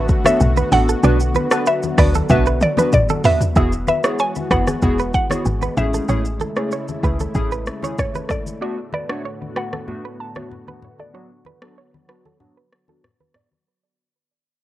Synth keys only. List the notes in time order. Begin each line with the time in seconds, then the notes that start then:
0.25 B3 D4 F#4 A4
0.71 B3 D4 F#4 A4
1.03 B3 D4 F#4 B4
1.51 B3 D4 F#4 B4
1.98 B3 D4 F#4 B4
2.30 B3 D4 F#4 B4
2.77 B3 D4 F#4 B4
3.24 B3 D4 F#4 B4
3.56 B3 E4 F#4 G#4
4.04 B3 E4 F#4 G#4
4.51 B3 E4 F#4 G#4
4.82 B3 E4 F#4 G#4
5.30 B3 E4 F#4 G#4
5.77 A3 C#4 E4 G#4
6.08 A3 C#4 E4 G#4
6.56 A3 C#4 E4 G#4
7.03 A3 C#4 E4 G#4
7.34 A3 C#4 E4 G#4
7.83 A3 C#4 E4 G#4
8.61 A3 B3 D4 F#4
9.09 A3 B3 D4 F#4
9.56 A3 B3 D4 F#4
9.87 A3 B3 D4 F#4
10.35 A3 B3 D4 F#4
11.14 F#3 B3 D4 F#4
11.62 F#3 B3 D4 F#4
12.08 F#3 B3 D4 F#4
12.40 F#3 B3 D4 F#4
12.88 F#3 B3 D4 F#4